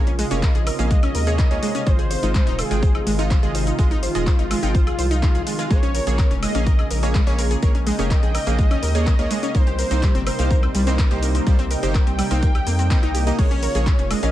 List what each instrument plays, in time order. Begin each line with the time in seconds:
Already playing: analog synth bass A#1, analog synth pad C3 C#3 G#3 F4
0.07 synth arpeggio sound C#4, closed hi-hat
0.19 synth arpeggio sound G#3, analog synth lead D#5, open hi-hat, cabasa
0.31 analog synth bass F1, supersaw synth A#3 G#4 C#5, synth arpeggio sound C#4, closed hi-hat, cabasa
0.43 synth arpeggio sound A#4, kick, clap, closed hi-hat, cabasa
0.55 analog synth bass A#1, synth arpeggio sound G#4, closed hi-hat
0.67 synth arpeggio sound A#4, open hi-hat, cabasa, high woodblock
0.79 analog synth bass A#1, supersaw synth A#3 G#4 F5, synth arpeggio sound C#4, closed hi-hat, cabasa
0.91 synth arpeggio sound G#3, kick, closed hi-hat, cabasa
1.03 synth arpeggio sound C#4, closed hi-hat, high woodblock
1.15 analog synth bass D#2, synth arpeggio sound A#4, open hi-hat, cabasa
1.27 supersaw synth A#3 G#4 C#5, synth arpeggio sound G#4, closed hi-hat, cabasa
1.39 synth arpeggio sound A#4, kick, clap, closed hi-hat, cabasa
1.51 analog synth bass C#2, supersaw synth A#3 G#4 C#5, synth arpeggio sound C#4, closed hi-hat
1.63 synth arpeggio sound G#3, open hi-hat, cabasa
1.75 synth arpeggio sound C#4, closed hi-hat, cabasa
1.87 analog synth bass G#1, analog synth pad D#3 F4, supersaw synth G#3 F4 D#5, synth arpeggio sound C5, analog synth lead C5, kick, closed hi-hat, cabasa
1.99 synth arpeggio sound G#4, closed hi-hat
2.11 synth arpeggio sound C5, open hi-hat, cabasa
2.23 analog synth bass G#1, supersaw synth G#3 F4 D#5, synth arpeggio sound D#4, closed hi-hat, cabasa
2.35 synth arpeggio sound G#3, kick, clap, closed hi-hat, cabasa
2.47 analog synth bass D#1, synth arpeggio sound D#4, closed hi-hat
2.58 analog synth lead G#4, synth arpeggio sound C5, open hi-hat, cabasa, high woodblock
2.71 analog synth bass G#1, supersaw synth G#3 F4 G5, synth arpeggio sound G#4, closed hi-hat, cabasa
2.83 synth arpeggio sound C5, kick, closed hi-hat, cabasa
2.95 synth arpeggio sound D#4, high woodblock
3.07 analog synth bass G#1, synth arpeggio sound G#3, open hi-hat, cabasa
3.19 supersaw synth G#3 F4 D#5, synth arpeggio sound D#4, closed hi-hat, cabasa
3.31 synth arpeggio sound C5, kick, clap, closed hi-hat, cabasa
3.43 analog synth bass G#1, supersaw synth G#3 F4 D#5, synth arpeggio sound G#4, closed hi-hat
3.55 synth arpeggio sound C5, open hi-hat, cabasa
3.67 synth arpeggio sound D#4, closed hi-hat, cabasa
3.79 analog synth bass G#1, synth arpeggio sound G#3, supersaw synth G#3 F4 D#5, kick, closed hi-hat, cabasa
3.91 synth arpeggio sound D#4, closed hi-hat
4.03 analog synth lead F4, synth arpeggio sound C5, open hi-hat, cabasa
4.15 analog synth bass D#1, supersaw synth G#3 F4 D#5, synth arpeggio sound G#4, closed hi-hat, cabasa
4.27 synth arpeggio sound C5, kick, clap, closed hi-hat, cabasa
4.39 analog synth bass G#1, synth arpeggio sound D#4, closed hi-hat
4.51 synth arpeggio sound G#3, open hi-hat, cabasa, high woodblock
4.63 analog synth bass G#1, supersaw synth G#3 F4 G5, synth arpeggio sound D#4, closed hi-hat, cabasa
4.75 synth arpeggio sound C5, kick, closed hi-hat, cabasa
4.87 synth arpeggio sound G#4, closed hi-hat, high woodblock
4.99 analog synth bass C2, synth arpeggio sound C5, open hi-hat, cabasa
5.11 synth arpeggio sound D#4, closed hi-hat, cabasa
5.23 supersaw synth G#3 F4 F5, synth arpeggio sound D#4, kick, clap, closed hi-hat, cabasa
5.35 analog synth bass C2, synth arpeggio sound G#4, closed hi-hat
5.47 synth arpeggio sound G#3, open hi-hat, cabasa
5.59 supersaw synth G#3 F4 F5, synth arpeggio sound G#4, closed hi-hat, cabasa
5.70 analog synth bass A#1, analog synth pad C#3 G#3 A#3, synth arpeggio sound G#3, supersaw synth A#3 G#4 C#5, analog synth lead C#5, kick, closed hi-hat, cabasa
5.83 synth arpeggio sound C#4, closed hi-hat
5.95 synth arpeggio sound A#4, open hi-hat, cabasa
6.07 analog synth bass A#1, supersaw synth A#3 G#4 C#5, synth arpeggio sound G#4, closed hi-hat, cabasa
6.19 synth arpeggio sound A#4, kick, clap, closed hi-hat, cabasa
6.31 analog synth bass F1, synth arpeggio sound C#4, closed hi-hat
6.43 synth arpeggio sound G#3, analog synth lead D#5, open hi-hat, cabasa, high woodblock
6.55 analog synth bass A#1, supersaw synth A#3 G#4 F5, synth arpeggio sound C#4, closed hi-hat, cabasa
6.67 synth arpeggio sound A#4, kick, closed hi-hat, cabasa
6.79 synth arpeggio sound G#4, high woodblock
6.91 analog synth bass A#1, synth arpeggio sound A#4, open hi-hat, cabasa
7.03 supersaw synth A#3 G#4 C#5, synth arpeggio sound C#4, closed hi-hat, cabasa
7.15 synth arpeggio sound G#3, kick, clap, closed hi-hat, cabasa
7.27 analog synth bass A#1, supersaw synth A#3 G#4 C#5, synth arpeggio sound C#4, closed hi-hat
7.39 synth arpeggio sound A#4, open hi-hat, cabasa
7.51 synth arpeggio sound G#4, closed hi-hat, cabasa
7.63 analog synth bass A#1, supersaw synth A#3 G#4 C#5, synth arpeggio sound A#4, analog synth pad G5, kick, closed hi-hat, cabasa
7.75 synth arpeggio sound C#4, closed hi-hat
7.87 synth arpeggio sound G#3, analog synth lead D#5, open hi-hat, cabasa
7.99 analog synth bass F1, supersaw synth A#3 G#4 C#5, synth arpeggio sound C#4, closed hi-hat, cabasa
8.11 synth arpeggio sound A#4, kick, clap, closed hi-hat, cabasa
8.23 analog synth bass A#1, synth arpeggio sound G#4, closed hi-hat
8.35 synth arpeggio sound A#4, open hi-hat, cabasa, high woodblock
8.47 analog synth bass A#1, supersaw synth A#3 G#4 F5, synth arpeggio sound C#4, closed hi-hat, cabasa
8.59 synth arpeggio sound G#3, kick, closed hi-hat, cabasa
8.71 synth arpeggio sound C#4, closed hi-hat, high woodblock
8.83 analog synth bass D#2, synth arpeggio sound A#4, open hi-hat, cabasa
8.95 supersaw synth A#3 G#4 C#5, synth arpeggio sound G#4, closed hi-hat, cabasa
9.07 synth arpeggio sound A#4, kick, clap, closed hi-hat, cabasa
9.19 analog synth bass C#2, supersaw synth A#3 G#4 C#5, synth arpeggio sound C#4, closed hi-hat
9.31 synth arpeggio sound G#3, open hi-hat, cabasa
9.43 synth arpeggio sound C#4, closed hi-hat, cabasa
9.54 analog synth bass C2, analog synth pad C3 G3 A#3 D#4, supersaw synth A#3 D#4 C5, synth arpeggio sound A#4, analog synth lead C5, kick, closed hi-hat, cabasa
9.67 synth arpeggio sound G4, closed hi-hat
9.79 synth arpeggio sound A#4, open hi-hat, cabasa
9.91 analog synth bass C2, supersaw synth A#3 D#4 C5, synth arpeggio sound C4, closed hi-hat, cabasa
10.03 synth arpeggio sound G3, kick, clap, closed hi-hat, cabasa
10.15 analog synth bass G1, synth arpeggio sound C4, closed hi-hat
10.27 synth arpeggio sound A#4, analog synth lead C5, open hi-hat, cabasa, high woodblock
10.39 analog synth bass C2, supersaw synth A#3 D#4 F5, synth arpeggio sound G4, closed hi-hat, cabasa
10.51 synth arpeggio sound A#4, kick, closed hi-hat, cabasa
10.63 synth arpeggio sound C4, high woodblock
10.75 analog synth bass C2, synth arpeggio sound G3, open hi-hat, cabasa
10.87 supersaw synth A#3 D#4 C5, synth arpeggio sound C4, closed hi-hat, cabasa
10.99 synth arpeggio sound A#4, kick, clap, closed hi-hat, cabasa
11.11 analog synth bass C2, supersaw synth A#3 D#4 C5, synth arpeggio sound G4, closed hi-hat
11.23 synth arpeggio sound A#4, open hi-hat, cabasa
11.35 synth arpeggio sound C4, closed hi-hat, cabasa
11.47 analog synth bass C2, synth arpeggio sound G3, supersaw synth A#3 D#4 C5, kick, closed hi-hat, cabasa
11.59 synth arpeggio sound C4, closed hi-hat
11.71 synth arpeggio sound A#4, analog synth lead G5, open hi-hat, cabasa
11.83 analog synth bass G1, supersaw synth A#3 D#4 C5, synth arpeggio sound G4, closed hi-hat, cabasa
11.95 synth arpeggio sound A#4, kick, clap, closed hi-hat, cabasa
12.07 analog synth bass C2, synth arpeggio sound C4, closed hi-hat
12.19 synth arpeggio sound G3, open hi-hat, cabasa, high woodblock
12.31 analog synth bass C2, supersaw synth A#3 D#4 F5, synth arpeggio sound C4, closed hi-hat, cabasa
12.43 synth arpeggio sound A#4, kick, closed hi-hat, cabasa
12.55 synth arpeggio sound G4, closed hi-hat, high woodblock
12.67 analog synth bass F2, synth arpeggio sound A#3, open hi-hat, cabasa
12.79 synth arpeggio sound C4, closed hi-hat, cabasa
12.91 supersaw synth A#3 D#4 D#5, synth arpeggio sound C4, kick, clap, closed hi-hat, cabasa
13.03 analog synth bass C2, synth arpeggio sound D#4, closed hi-hat
13.15 synth arpeggio sound G4, open hi-hat, cabasa
13.27 supersaw synth A#3 D#4 D#5, synth arpeggio sound G4, closed hi-hat, cabasa
13.39 analog synth bass A#1, analog synth pad C#3 G#3 F4, synth arpeggio sound G#3, supersaw synth A#3 G#4 C#5, analog synth lead C#5, kick, closed hi-hat, crash, cabasa
13.51 synth arpeggio sound C#4, closed hi-hat
13.63 synth arpeggio sound A#4, open hi-hat, cabasa
13.75 analog synth bass A#1, supersaw synth A#3 G#4 C#5, synth arpeggio sound G#4, closed hi-hat, cabasa
13.87 synth arpeggio sound C#4, kick, clap, closed hi-hat, cabasa
13.99 analog synth bass F1, synth arpeggio sound C#4, closed hi-hat
14.11 synth arpeggio sound G#3, analog synth lead D#5, open hi-hat, cabasa, high woodblock
14.23 analog synth bass A#1, supersaw synth A#3 G#4 F5, synth arpeggio sound C#4, closed hi-hat, cabasa